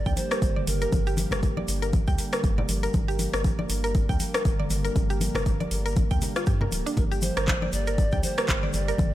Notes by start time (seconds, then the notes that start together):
Already playing: D3 G3 A#3 G4 D5
0.06 D2 G5, kick, shaker
0.16 C5, open hi-hat, high conga, shaker
0.31 A#4, cross-stick, closed hi-hat, shaker
0.42 G1, kick, closed hi-hat, shaker
0.56 D5, mid tom
0.67 G1 A#4, open hi-hat, mid tom, shaker
0.81 A#4, closed hi-hat, shaker
0.92 G1, kick, closed hi-hat, mid tom, high conga, shaker
1.07 G4, closed hi-hat, shaker
1.17 open hi-hat, high conga, shaker
1.31 G1 A#4, cross-stick, closed hi-hat, mid tom, low conga, shaker
1.43 kick, closed hi-hat, high conga, shaker
1.57 D5, high conga
1.68 G1, open hi-hat, shaker
1.82 A#4, closed hi-hat, shaker
1.92 kick, closed hi-hat, high conga, shaker
2.08 D2 G5, kick, shaker
2.18 open hi-hat, shaker
2.33 A#4, cross-stick, closed hi-hat, shaker
2.44 G1, kick, closed hi-hat, shaker
2.58 D5, low conga
2.69 G1, open hi-hat, high conga, shaker
2.83 A#4, closed hi-hat, shaker
2.94 G1 A#4, kick, closed hi-hat, high conga, shaker
3.08 G4, closed hi-hat, shaker
3.19 open hi-hat, high conga, shaker
3.33 G1 A#4, cross-stick, closed hi-hat, shaker
3.44 kick, closed hi-hat, high conga, shaker
3.59 D5, high conga
3.70 G1, open hi-hat, shaker
3.84 A#4, closed hi-hat, shaker
3.95 kick, closed hi-hat, shaker
4.09 D2 G5, kick, shaker
4.20 open hi-hat, high conga, shaker
4.34 A#4, cross-stick, closed hi-hat, shaker
4.45 G1, kick, closed hi-hat, shaker
4.60 D5, mid tom
4.70 G1, open hi-hat, mid tom, shaker
4.85 A#4, closed hi-hat, shaker
4.96 G1, kick, closed hi-hat, mid tom, high conga, shaker
5.10 G4, closed hi-hat, shaker
5.21 open hi-hat, high conga, shaker
5.35 G1 A#4, cross-stick, closed hi-hat, mid tom, low conga, shaker
5.46 kick, closed hi-hat, high conga, shaker
5.60 D5, closed hi-hat, high conga
5.71 G1, open hi-hat, shaker
5.86 A#4, closed hi-hat, shaker
5.96 kick, closed hi-hat, high conga, shaker
6.11 D2 G5, kick, closed hi-hat, shaker
6.22 open hi-hat, low conga, shaker
6.36 F4, cross-stick, closed hi-hat, shaker
6.46 G2 G4, kick, closed hi-hat, shaker
6.61 A#4, low conga
6.71 D1, open hi-hat, high conga, shaker
6.86 D4, open hi-hat, shaker
6.97 G1 G4 A#4, kick, closed hi-hat, high conga, shaker
7.12 G4, closed hi-hat, shaker
7.22 C5, open hi-hat, high conga, shaker
7.37 G1 A#4, cross-stick, closed hi-hat, shaker
7.48 kick, clap, closed hi-hat, high conga, shaker
7.62 D5, high conga
7.73 G1 D5, open hi-hat, shaker
7.87 A#4, closed hi-hat, shaker
7.98 kick, closed hi-hat, shaker
8.12 D2 G5, kick, shaker
8.23 C5, open hi-hat, high conga, shaker
8.38 A#4, cross-stick, closed hi-hat, shaker
8.48 G1, kick, clap, closed hi-hat, shaker
8.63 D5, mid tom
8.73 G1 D5, open hi-hat, mid tom, shaker
8.88 A#4, closed hi-hat, shaker
8.98 G1, kick, closed hi-hat, mid tom, high conga, shaker